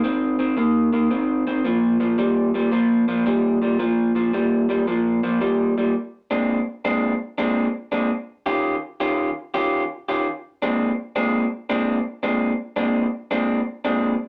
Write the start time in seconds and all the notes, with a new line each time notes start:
0.03 D#3 C4
0.39 D#3 C4
0.57 D#3 A#3
0.93 D#3 A#3
1.10 D#3 C4
1.47 D#3 C4
1.64 A#2 F3
2.00 A#2 F3
2.18 A#2 G3
2.54 A#2 G3
2.72 A#2 F3
3.08 A#2 F3
3.26 A#2 G3
3.62 A#2 G3
3.79 A#2 F3
4.15 A#2 F3
4.33 A#2 G3
4.69 A#2 G3
4.87 A#2 F3
5.23 A#2 F3
5.41 A#2 G3
5.78 A#2 G3
6.31 A#2 G#3 C4 D4
6.85 A#2 G#3 C4 D4
7.38 A#2 G#3 C4 D4
7.92 A#2 G#3 C4 D4
8.46 D#3 C#4 F4 G4
9.00 D#3 C#4 F4 G4
9.54 D#3 C#4 F4 G4
10.09 D#3 C#4 F4 G4
10.62 A#2 G#3 C4 D4
11.16 A#2 G#3 C4 D4
11.70 A#2 G#3 C4 D4
12.23 A#2 G#3 C4 D4
12.76 A#2 G#3 C4 D4
13.31 A#2 G#3 C4 D4
13.85 A#2 G#3 C4 D4